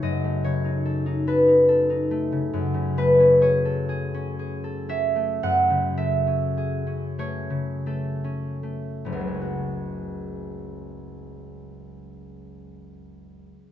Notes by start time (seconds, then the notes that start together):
Already playing: C#3 A3 D#4 A4 C#5
0.02 F#2 D#5
0.24 A3
0.44 C#3 C#5
0.65 D#4
0.85 A4
1.06 D#4
1.27 A4 B4
1.48 D#4
1.69 A4
1.90 D#4
2.11 A3
2.32 C#3
2.53 F#2
2.74 C#3
2.97 A3 B4
3.19 C#4
3.41 G#4 C#5
3.65 A4
3.89 G#4
4.14 C#4
4.39 G#4
4.64 A4
4.89 C#4 E5
5.16 A3
5.43 F#2 F#5
5.70 C#3
5.97 A3 E5
6.27 C#4
6.57 G#4
6.87 C#4
7.19 A3 C#5
7.50 C#3
7.86 A3 A4
8.24 C#4
8.63 A3
9.05 F#1 C#3
9.13 C#2
9.20 F#3
9.27 G#3
9.34 C#4
9.42 F#4